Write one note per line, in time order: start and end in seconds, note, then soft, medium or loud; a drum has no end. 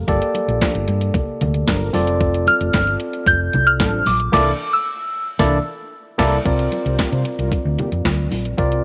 0.08 0.19 G1 loud
0.08 1.90 A#3 medium
0.08 1.90 G4 medium
0.08 1.91 A4 medium
0.08 1.91 D5 loud
0.08 kick loud
0.08 closed hi-hat medium
0.08 muted conga soft
0.22 closed hi-hat soft
0.35 closed hi-hat medium
0.35 muted conga medium
0.48 0.59 A#1 medium
0.48 closed hi-hat soft
0.61 0.73 F3 medium
0.61 0.73 D4 medium
0.61 0.73 A#4 medium
0.61 kick medium
0.61 snare medium
0.61 clap medium
0.61 closed hi-hat medium
0.61 high conga medium
0.75 0.85 G1 medium
0.75 closed hi-hat soft
0.88 1.09 G2 loud
0.88 closed hi-hat medium
1.01 closed hi-hat medium
1.14 kick loud
1.14 closed hi-hat loud
1.14 muted conga medium
1.14 low conga medium
1.41 1.62 D2 medium
1.41 closed hi-hat medium
1.41 muted conga medium
1.41 low conga medium
1.54 closed hi-hat medium
1.67 1.89 G1 loud
1.67 1.90 F3 medium
1.67 1.90 D4 loud
1.67 1.90 A#4 loud
1.67 kick loud
1.67 snare loud
1.67 clap medium
1.67 closed hi-hat medium
1.67 high conga medium
1.93 2.47 F1 loud
1.93 4.02 C4 medium
1.93 4.02 F4 medium
1.93 4.03 A4 medium
1.93 4.03 D5 medium
1.93 open hi-hat medium
1.93 high conga medium
2.07 closed hi-hat medium
2.21 kick loud
2.21 closed hi-hat medium
2.34 closed hi-hat soft
2.47 2.97 F6 loud
2.47 closed hi-hat medium
2.47 muted conga medium
2.61 2.71 F1 medium
2.61 closed hi-hat soft
2.73 2.95 G1 medium
2.73 2.85 F3 medium
2.73 2.85 D4 medium
2.73 2.85 A4 medium
2.73 kick loud
2.73 snare medium
2.73 clap medium
2.73 closed hi-hat medium
2.73 high conga medium
2.87 closed hi-hat soft
3.00 closed hi-hat medium
3.13 closed hi-hat medium
3.27 3.48 F1 medium
3.27 3.68 G6 loud
3.27 kick loud
3.27 closed hi-hat loud
3.27 muted conga medium
3.53 3.80 C2 medium
3.53 closed hi-hat medium
3.53 muted conga medium
3.53 low conga medium
3.67 4.04 F6 loud
3.67 closed hi-hat medium
3.80 4.01 A1 loud
3.80 4.03 F3 loud
3.80 4.03 D4 loud
3.80 4.03 A4 loud
3.80 kick loud
3.80 snare loud
3.80 clap medium
3.80 closed hi-hat medium
3.80 high conga medium
4.06 4.28 A#1 medium
4.06 4.31 D6 medium
4.06 open hi-hat medium
4.06 high conga medium
4.20 closed hi-hat medium
4.32 4.51 C2 loud
4.32 4.51 E3 loud
4.32 4.51 A#3 loud
4.32 4.51 D4 loud
4.32 4.51 E4 loud
4.32 4.51 A4 loud
4.32 4.52 D5 loud
4.32 4.74 D6 medium
4.32 kick loud
4.32 snare loud
4.32 crash loud
4.73 5.75 E6 medium
5.39 5.58 C2 loud
5.39 5.58 E3 loud
5.39 5.57 A#3 loud
5.39 5.58 D4 loud
5.39 5.57 E4 loud
5.39 5.57 A4 loud
5.39 5.58 A4 loud
5.39 5.58 D5 loud
5.39 kick loud
5.39 snare medium
6.18 6.37 C2 loud
6.18 6.37 G3 loud
6.18 6.37 A#3 loud
6.18 6.37 E4 loud
6.18 6.37 A4 loud
6.18 6.37 A#4 loud
6.18 6.37 D5 loud
6.18 kick loud
6.18 snare loud
6.18 crash medium
6.44 6.67 C2 medium
6.44 8.53 C4 medium
6.44 8.54 F4 medium
6.44 8.54 A#4 medium
6.44 8.54 D5 medium
6.44 kick loud
6.44 closed hi-hat medium
6.44 muted conga soft
6.59 closed hi-hat soft
6.72 closed hi-hat medium
6.72 muted conga soft
6.86 6.96 C2 medium
6.86 6.96 G3 medium
6.86 6.96 F4 medium
6.86 6.96 C5 medium
6.86 closed hi-hat soft
6.99 7.09 A#3 medium
6.99 7.09 G4 medium
6.99 7.10 D5 medium
6.99 muted fingered electric bass stroke soft
6.99 kick loud
6.99 snare loud
6.99 clap medium
6.99 closed hi-hat medium
6.99 high conga medium
7.12 7.23 C3 medium
7.12 7.23 G3 medium
7.12 7.23 F4 medium
7.12 7.23 C5 medium
7.12 closed hi-hat soft
7.25 closed hi-hat medium
7.39 7.49 C2 medium
7.39 7.49 G3 medium
7.39 7.49 F4 loud
7.39 7.50 A#4 loud
7.39 closed hi-hat medium
7.52 kick loud
7.52 closed hi-hat loud
7.52 muted conga medium
7.65 7.76 D2 medium
7.78 7.89 D3 medium
7.78 7.89 A#3 medium
7.78 7.89 G4 medium
7.78 closed hi-hat medium
7.78 muted conga medium
7.78 low conga medium
7.92 8.02 F2 medium
7.92 closed hi-hat medium
8.05 8.26 D2 loud
8.05 kick loud
8.05 snare loud
8.05 clap medium
8.05 closed hi-hat medium
8.05 high conga medium
8.31 8.53 A#1 medium
8.31 open hi-hat medium
8.31 high conga medium
8.45 closed hi-hat soft
8.57 8.79 C2 loud
8.57 8.84 C4 medium
8.57 8.84 F4 medium
8.57 8.84 A#4 medium
8.57 8.84 D5 medium
8.57 kick loud
8.57 closed hi-hat medium
8.72 closed hi-hat soft